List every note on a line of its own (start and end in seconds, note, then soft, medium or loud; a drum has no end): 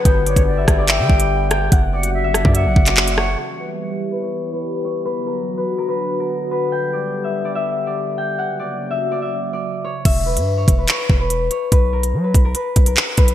0.00 1.69 D3 medium
0.00 1.68 B3 medium
0.00 1.89 B4 medium
0.05 0.35 G1 loud
0.05 1.70 G3 medium
0.05 1.70 G4 medium
0.05 1.51 G5 medium
0.05 kick loud
0.05 closed hi-hat medium
0.26 0.46 C#5 medium
0.26 0.78 D5 medium
0.26 closed hi-hat medium
0.36 0.66 G1 loud
0.36 kick medium
0.36 closed hi-hat medium
0.47 0.86 D5 medium
0.57 0.88 E5 medium
0.68 1.01 G1 loud
0.68 kick medium
0.68 cross-stick loud
0.68 closed hi-hat medium
0.78 1.20 D5 medium
0.88 2.24 E5 medium
0.88 1.68 G5 medium
0.88 clap loud
0.88 closed hi-hat medium
0.99 1.09 D3 loud
1.10 1.70 G1 loud
1.10 kick loud
1.20 1.93 D5 medium
1.20 closed hi-hat medium
1.51 1.78 G5 medium
1.51 cross-stick loud
1.51 closed hi-hat medium
1.72 2.26 F#1 loud
1.72 3.37 C#3 medium
1.72 3.37 F#3 medium
1.72 3.37 A#3 medium
1.72 3.37 F#4 loud
1.72 3.33 F#5 medium
1.72 kick loud
1.72 closed hi-hat medium
1.93 2.45 D5 medium
1.93 2.13 F#5 medium
2.03 closed hi-hat medium
2.14 2.53 E5 medium
2.24 2.36 G1 medium
2.24 2.55 E5 medium
2.34 2.44 F#1 loud
2.34 cross-stick loud
2.34 closed hi-hat medium
2.45 2.67 F#2 loud
2.45 2.86 D5 medium
2.45 kick medium
2.55 3.38 E5 medium
2.55 3.14 F#5 medium
2.55 closed hi-hat medium
2.66 2.76 A#1 loud
2.76 3.36 F#1 loud
2.76 kick medium
2.86 3.24 D5 medium
2.86 clap medium
2.86 closed hi-hat loud
2.97 clap loud
3.08 closed hi-hat medium
3.18 3.90 C#5 medium
3.18 3.38 F#5 medium
3.18 cross-stick loud
3.39 5.04 E3 medium
3.39 5.04 G3 medium
3.39 8.35 B3 medium
3.39 5.04 G4 medium
3.39 5.11 E5 medium
3.59 4.11 B4 medium
3.91 4.21 C#5 medium
4.12 4.53 B4 medium
4.22 4.84 C#5 medium
4.53 5.05 B4 medium
4.84 6.76 C#5 medium
5.05 8.35 D3 medium
5.05 6.70 F#3 medium
5.05 6.70 F#4 medium
5.05 5.32 B4 medium
5.26 5.63 A#4 medium
5.57 5.84 B4 medium
5.78 5.94 A#4 medium
5.88 6.26 B4 medium
6.20 6.57 A#4 medium
6.51 8.56 B4 medium
6.72 8.37 G3 medium
6.72 8.37 G4 medium
6.72 8.17 G5 medium
6.93 7.44 D5 medium
7.24 7.55 E5 medium
7.45 7.86 D5 medium
7.55 8.90 E5 medium
7.87 8.59 D5 medium
8.18 8.45 G5 medium
8.39 10.04 C#3 medium
8.39 10.04 F#3 medium
8.39 10.04 A#3 medium
8.39 10.04 F#4 medium
8.39 9.99 F#5 medium
8.59 9.11 D5 medium
8.91 9.22 E5 medium
9.12 9.53 D5 medium
9.22 10.05 E5 medium
9.53 9.90 D5 medium
9.84 10.57 C#5 medium
10.05 10.38 E1 loud
10.05 11.78 E5 medium
10.05 kick loud
10.05 closed hi-hat medium
10.05 crash loud
10.26 10.78 B4 medium
10.37 10.66 G2 loud
10.37 closed hi-hat medium
10.57 10.88 C#5 medium
10.68 10.88 E1 loud
10.68 kick medium
10.68 closed hi-hat medium
10.78 11.19 B4 medium
10.88 11.51 C#5 medium
10.88 clap loud
10.88 closed hi-hat medium
11.10 11.50 E1 loud
11.10 kick medium
11.20 11.71 B4 medium
11.30 closed hi-hat medium
11.51 13.35 C#5 medium
11.51 closed hi-hat medium
11.72 12.15 B1 loud
11.72 11.99 B4 medium
11.72 kick loud
11.72 closed hi-hat medium
11.93 12.30 A#4 medium
12.03 closed hi-hat medium
12.14 12.33 F#3 loud
12.24 12.51 B4 medium
12.34 12.54 B1 loud
12.34 kick medium
12.34 closed hi-hat medium
12.45 12.61 A#4 medium
12.55 12.92 B4 medium
12.55 closed hi-hat medium
12.76 12.96 B1 loud
12.76 kick medium
12.76 closed hi-hat medium
12.86 13.24 A#4 medium
12.86 closed hi-hat medium
12.97 clap loud
13.17 13.35 B1 loud
13.17 13.35 B4 medium
13.17 kick loud
13.17 closed hi-hat medium
13.28 closed hi-hat medium